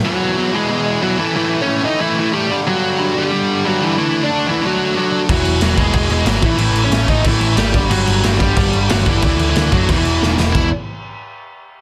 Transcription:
0.04 distorted electric guitar E2 B2 E3, lead electric guitar F#3 F#4
0.37 distorted electric guitar E2 B2 E3
0.53 distorted electric guitar E2 B2 E3, lead electric guitar G#3 G#4
0.70 distorted electric guitar E2 B2 E3
1.02 distorted electric guitar E2 B2 E3, lead electric guitar F#3 F#4
1.19 distorted electric guitar A2 E3 A3, lead electric guitar E3 E4
1.35 distorted electric guitar A2 E3 A3, lead electric guitar E3 E4
1.62 lead electric guitar C#4 C#5
1.67 distorted electric guitar A2 E3 A3
1.82 distorted electric guitar A2 E3 A3, lead electric guitar D#5
1.86 lead electric guitar D#4
1.99 distorted electric guitar A2 E3 A3, lead electric guitar E3 E4
2.18 lead electric guitar E3 E4
2.32 distorted electric guitar A2 E3 A3, lead electric guitar G3 G4
2.50 distorted electric guitar G2 D3 G3
2.66 distorted electric guitar G2 D3 G3, lead electric guitar F#3 F#4
2.98 distorted electric guitar G2 D3 G3
3.15 distorted electric guitar G2 D3 G3, lead electric guitar G3
3.19 lead electric guitar G4
3.32 distorted electric guitar G2 D3 G3
3.65 distorted electric guitar G2 D3 G3, lead electric guitar F#3 F#4
3.81 distorted electric guitar G2 D3 G3, lead electric guitar E3 E4
3.98 distorted electric guitar D3 A3 D4, lead electric guitar E3 E4
4.23 lead electric guitar D4 D5
4.30 distorted electric guitar D3 A3 D4
4.47 distorted electric guitar D3 A3 D4, lead electric guitar E3 E4
4.61 distorted electric guitar D3 A3 D4, lead electric guitar F#3
4.67 lead electric guitar F#4
4.95 distorted electric guitar D3 A3 D4, lead electric guitar F#3
4.99 lead electric guitar F#4
5.11 distorted electric guitar D3 A3 D4
5.28 picked electric bass E1, distorted electric guitar E2 B2 E3, lead electric guitar F#3 F#4, kick, crash
5.45 picked electric bass E1, crash
5.61 picked electric bass E1, distorted electric guitar E2 B2 E3, lead electric guitar F#3, snare, crash
5.65 lead electric guitar F#4
5.75 picked electric bass E1, distorted electric guitar E2 B2 E3, lead electric guitar G#3 G#4, kick, crash
5.93 picked electric bass E1, distorted electric guitar E2 B2 E3, kick, crash
6.09 picked electric bass E1, lead electric guitar G#3, crash
6.14 lead electric guitar G#4
6.25 picked electric bass G#1, distorted electric guitar E2 B2 E3, lead electric guitar F#3, snare, crash
6.30 lead electric guitar F#4
6.42 picked electric bass A1, distorted electric guitar A2 E3 A3, lead electric guitar E3 E4, kick, crash
6.56 picked electric bass A1, distorted electric guitar A2 E3 A3, lead electric guitar E3, crash
6.61 lead electric guitar E4
6.72 picked electric bass A1, crash
6.84 lead electric guitar C#4 C#5
6.90 picked electric bass A1, distorted electric guitar A2 E3 A3, snare, crash
7.08 picked electric bass A1, distorted electric guitar A2 E3 A3, lead electric guitar D#4 D#5, kick, crash
7.23 picked electric bass A1, distorted electric guitar A2 E3 A3, lead electric guitar E3, kick, crash
7.29 lead electric guitar E4
7.40 picked electric bass A1, crash
7.56 picked electric bass G#1, distorted electric guitar A2 E3 A3, lead electric guitar G3 G4, snare, crash
7.74 picked electric bass G1, distorted electric guitar G2 D3 G3, kick, crash
7.90 picked electric bass G1, distorted electric guitar G2 D3 G3, lead electric guitar F#3 F#4, crash
8.07 picked electric bass G1, crash
8.23 picked electric bass G1, distorted electric guitar G2 D3 G3, snare, crash
8.39 picked electric bass G1, distorted electric guitar G2 D3 G3, lead electric guitar G3 G4, kick, crash
8.56 picked electric bass G1, distorted electric guitar G2 D3 G3, kick, crash
8.73 picked electric bass G1, crash
8.89 picked electric bass G1, distorted electric guitar G2 D3 G3, lead electric guitar F#3 F#4, snare, crash
9.06 picked electric bass G1, distorted electric guitar G2 D3 G3, lead electric guitar E3, kick, crash
9.10 lead electric guitar E4
9.22 picked electric bass D2, distorted electric guitar D3 A3 D4, kick, crash
9.39 picked electric bass D2, crash
9.49 lead electric guitar E3 E4
9.55 picked electric bass D2, distorted electric guitar D3 A3 D4, snare, crash
9.71 picked electric bass F#2, distorted electric guitar D3 A3 D4, lead electric guitar F#3 F#4, kick, crash
9.88 picked electric bass E1, distorted electric guitar E2 B2 E3, lead electric guitar E3 E4, kick, crash
10.05 picked electric bass E1, crash
10.21 picked electric bass E1, distorted electric guitar E2 B2 E3, lead electric guitar D#4, snare
10.38 picked electric bass E1, distorted electric guitar E2 B2 E3, snare
10.53 picked electric bass E1, distorted electric guitar E2 B2 E3, lead electric guitar E4, kick, crash

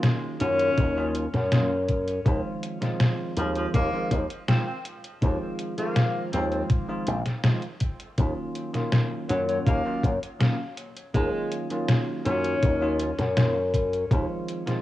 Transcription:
Already playing: tine electric piano D#3 F#3 A#3 C#4 F4
0.03 snare, closed hi-hat
0.40 slap bass F#2, tine electric piano D#3 F#3 A#3 C#4 F4, tenor saxophone C#4, closed hi-hat
0.59 closed hi-hat
0.77 slap bass D#2, kick, closed hi-hat
0.96 tine electric piano D#3 F#3 A#3 C#4 F4
1.15 closed hi-hat
1.34 slap bass F#2, snare, closed hi-hat
1.51 tine electric piano D#3 F#3 A#3 C#4 F4, snare, closed hi-hat
1.89 kick, closed hi-hat
2.08 closed hi-hat
2.25 slap bass D#2, tine electric piano D#3 F3 G#3 C4 F4, kick, closed hi-hat
2.63 closed hi-hat
2.81 tine electric piano D#3 F3 G#3 C4 F4, snare, closed hi-hat
3.00 snare, closed hi-hat
3.37 slap bass D#2, tine electric piano D#3 F3 G#3 C4 F4, tenor saxophone F3, closed hi-hat
3.56 tenor saxophone F3, closed hi-hat
3.74 slap bass D#2, tenor saxophone A#3, kick, closed hi-hat
3.92 tine electric piano D#3 F3 G#3 C4 F4
4.11 slap bass D#2, kick, closed hi-hat
4.30 closed hi-hat
4.48 tine electric piano D#3 F3 G#3 C4 F4, tenor saxophone C4, snare, closed hi-hat
4.67 tenor saxophone C4
4.85 closed hi-hat
5.04 closed hi-hat
5.22 slap bass D#2, tine electric piano D#3 F3 G#3 C4 F4, kick, closed hi-hat
5.59 closed hi-hat
5.78 tine electric piano D#3 F3 G#3 C4 F4, tenor saxophone A#3, closed hi-hat
5.96 snare, closed hi-hat
6.32 slap bass D#2, tine electric piano D#3 F3 G#3 C4 F4, tenor saxophone C4, closed hi-hat
6.52 tenor saxophone C4, closed hi-hat
6.70 kick, closed hi-hat
6.88 tine electric piano D#3 F3 G#3 C4 F4
7.07 slap bass A#1, closed hi-hat
7.26 snare, closed hi-hat
7.44 tine electric piano D#3 F3 G#3 C4 F4, snare, closed hi-hat
7.62 closed hi-hat
7.80 kick, closed hi-hat
8.00 closed hi-hat
8.18 slap bass D#2, tine electric piano D#3 F#3 A#3 C#4 F4, kick, closed hi-hat
8.55 closed hi-hat
8.74 tine electric piano D#3 F#3 A#3 C#4 F4, snare, closed hi-hat
8.92 snare, closed hi-hat
9.29 slap bass F#2, tine electric piano D#3 F#3 A#3 C#4 F4, tenor saxophone F#3, closed hi-hat
9.48 tenor saxophone F#3, closed hi-hat
9.66 slap bass D#2, tenor saxophone A#3, kick, closed hi-hat
9.85 tine electric piano D#3 F#3 A#3 C#4 F4
10.03 slap bass F#2, kick, closed hi-hat
10.23 closed hi-hat
10.39 tine electric piano D#3 F#3 A#3 C#4 F4, snare, closed hi-hat
10.78 closed hi-hat
10.97 closed hi-hat
11.14 slap bass D#2, tine electric piano D#3 F#3 A#3 C#4 F4, tenor saxophone G#3, kick, closed hi-hat
11.52 closed hi-hat
11.70 tine electric piano D#3 F#3 A#3 C#4 F4, closed hi-hat
11.88 snare, closed hi-hat
12.25 slap bass F#2, tine electric piano D#3 F#3 A#3 C#4 F4, tenor saxophone C#4, closed hi-hat
12.44 closed hi-hat
12.63 slap bass D#2, kick, closed hi-hat
12.81 tine electric piano D#3 F#3 A#3 C#4 F4
13.00 closed hi-hat
13.19 slap bass F#2, snare, closed hi-hat
13.36 tine electric piano D#3 F#3 A#3 C#4 F4, snare, closed hi-hat
13.74 kick, closed hi-hat
13.93 closed hi-hat
14.11 slap bass D#2, tine electric piano D#3 F3 G#3 C4 F4, kick, closed hi-hat
14.48 closed hi-hat
14.66 tine electric piano D#3 F3 G#3 C4 F4, snare, closed hi-hat

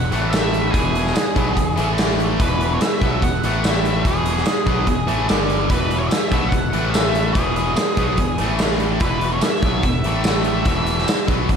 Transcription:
Already playing: picked electric bass E1, lead electric guitar F#5
0.12 picked electric bass A1, distorted electric guitar A2 E3 A3, closed hi-hat
0.30 lead electric guitar E5, closed hi-hat, tambourine
0.34 snare
0.54 closed hi-hat
0.71 picked electric bass E1, distorted electric guitar E2 B2 E3, lead electric guitar G#4, kick, closed hi-hat
0.95 closed hi-hat
1.07 snare
1.15 muted distorted electric guitar stroke, muted overdriven electric guitar stroke, snare, closed hi-hat, tambourine
1.35 picked electric bass B1, distorted electric guitar B2 F#3 B3, kick, closed hi-hat
1.56 picked electric bass E1, distorted electric guitar E2 B2, kick, closed hi-hat
1.76 picked electric bass A1, distorted electric guitar A2 E3 A3, closed hi-hat
1.98 snare, closed hi-hat, tambourine
2.10 snare
2.20 closed hi-hat
2.39 picked electric bass E1, distorted electric guitar E2 B2 E3, lead electric guitar B4, kick, closed hi-hat
2.61 closed hi-hat
2.73 lead electric guitar C#5
2.80 lead electric guitar E5, muted picked electric bass stroke, muted distorted electric guitar stroke, muted overdriven electric guitar stroke, snare, closed hi-hat, tambourine
3.01 picked electric bass B1, distorted electric guitar B2 F#3 B3, kick, closed hi-hat
3.22 picked electric bass E1, distorted electric guitar E2 B2, lead electric guitar F#5, kick, closed hi-hat
3.43 picked electric bass A1, distorted electric guitar A2 E3 A3, closed hi-hat
3.64 lead electric guitar E5, snare, closed hi-hat, tambourine
3.76 snare
3.85 closed hi-hat
4.05 picked electric bass E1, distorted electric guitar E2 B2 E3, lead electric guitar G#4, kick, closed hi-hat
4.26 closed hi-hat
4.37 snare
4.46 muted overdriven electric guitar stroke, muted distorted electric guitar stroke, snare, closed hi-hat, tambourine
4.66 picked electric bass B1, distorted electric guitar B2 F#3 B3, kick, closed hi-hat
4.87 picked electric bass E1, distorted electric guitar E2 B2, kick, closed hi-hat
5.07 picked electric bass A1, distorted electric guitar A2 E3 A3, closed hi-hat
5.27 picked electric bass G1, distorted electric guitar G2 D3 G3, snare, closed hi-hat, tambourine
5.40 snare
5.50 closed hi-hat
5.70 picked electric bass E1, distorted electric guitar E2 B2 E3, lead electric guitar B4, kick, closed hi-hat
5.91 closed hi-hat
5.98 lead electric guitar C#5
6.08 lead electric guitar E5, muted overdriven electric guitar stroke, closed hi-hat, tambourine
6.12 muted distorted electric guitar stroke, snare
6.32 picked electric bass B1, distorted electric guitar B2 F#3 B3, kick, closed hi-hat
6.49 picked electric bass E1, lead electric guitar F#5, kick, closed hi-hat
6.53 distorted electric guitar E2 B2
6.73 picked electric bass A1, distorted electric guitar A2 E3 A3, closed hi-hat
6.90 lead electric guitar E5, closed hi-hat, tambourine
6.95 snare
7.15 closed hi-hat
7.33 picked electric bass E1, distorted electric guitar E2 B2 E3, lead electric guitar G#4, kick, closed hi-hat
7.56 closed hi-hat
7.76 muted overdriven electric guitar stroke, muted distorted electric guitar stroke, snare, closed hi-hat, tambourine
7.97 picked electric bass B1, distorted electric guitar B2 F#3 B3, kick, closed hi-hat
8.17 picked electric bass E1, distorted electric guitar E2 B2, kick, closed hi-hat
8.38 picked electric bass A1, distorted electric guitar A2 E3 A3, closed hi-hat
8.59 snare, closed hi-hat, tambourine
8.71 snare
8.80 closed hi-hat
9.00 picked electric bass E1, distorted electric guitar E2 B2, lead electric guitar B4, kick, closed hi-hat
9.05 distorted electric guitar E3
9.21 closed hi-hat
9.33 lead electric guitar C#5
9.41 lead electric guitar E5, muted overdriven electric guitar stroke, muted distorted electric guitar stroke, snare, closed hi-hat, tambourine
9.62 picked electric bass B1, distorted electric guitar B2 F#3 B3, kick, closed hi-hat
9.83 picked electric bass E1, distorted electric guitar E2 B2, lead electric guitar E5, kick, closed hi-hat
10.04 picked electric bass A1, distorted electric guitar A2 E3 A3, closed hi-hat
10.24 snare, closed hi-hat, tambourine
10.44 lead electric guitar E5, closed hi-hat
10.65 picked electric bass E1, distorted electric guitar E2 B2 E3, kick, closed hi-hat
10.86 closed hi-hat
10.99 snare
11.08 muted distorted electric guitar stroke, muted overdriven electric guitar stroke, snare, closed hi-hat, tambourine
11.27 picked electric bass B1, distorted electric guitar B2 F#3 B3, kick, closed hi-hat
11.49 picked electric bass E1, distorted electric guitar E2 B2, kick, closed hi-hat

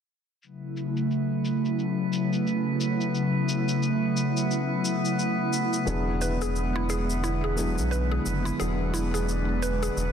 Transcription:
0.42 analog synth pad C#3 F#3 A3 E4, synth texture B3 B4, shaker
0.77 shaker
0.97 shaker
1.11 shaker
1.45 shaker
1.65 shaker
1.79 shaker
2.13 shaker
2.33 shaker
2.47 shaker
2.81 shaker
3.01 shaker
3.15 shaker
3.49 shaker
3.69 shaker
3.83 shaker
4.17 shaker
4.37 shaker
4.51 shaker
4.85 shaker
5.05 shaker
5.19 shaker
5.53 shaker
5.73 shaker
5.85 analog synth bass E1, analog synth pad D3 G#3 B3, felt piano F#3 B3 D4 E4, shaker
5.89 felt piano G#4
6.21 synth pluck B4, shaker
6.42 synth pluck G#4, shaker
6.56 shaker
6.76 synth pluck E4
6.90 synth pluck G#4, shaker
7.10 shaker
7.24 synth pluck E4, shaker
7.44 synth pluck G#4
7.56 felt piano F#3 B3 D4 E4, shaker
7.60 felt piano G#4
7.78 analog synth bass B1, shaker
7.91 synth pluck B4, shaker
8.11 synth pluck G#4
8.26 analog synth bass F#1, shaker
8.45 synth pluck E4, shaker
8.58 analog synth bass E1, felt piano F#3 B3 D4 E4, analog synth pad D4, synth pluck G#4, shaker
8.62 felt piano G#4
8.94 synth pluck E4, shaker
9.14 synth pluck G#4, shaker
9.29 shaker
9.62 synth pluck B4, shaker
9.83 synth pluck G#4, shaker
9.97 analog synth bass E1, shaker

